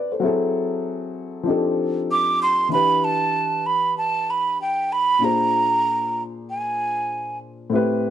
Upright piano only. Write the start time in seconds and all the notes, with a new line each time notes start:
Already playing: D3 C4 E4 F4 G4 B4 D5
0.12 A4 C5
0.20 F#3 C4 E4
0.24 G#4 A4
1.43 F3 C4 D4
1.48 D#4 G4 A4
2.69 E3 D4 E4
2.73 G4 B4
5.19 A#2 D4 F4
5.23 G#4 C5
7.70 A2 C4 E4
7.74 G4 B4